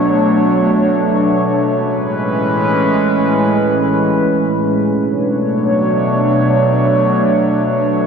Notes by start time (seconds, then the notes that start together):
Already playing: B2 F#3 A3 D4 C#5
1.66 A2 E3 G#3 C#4 B4
4.89 B2 F#3 A3 D4 C#5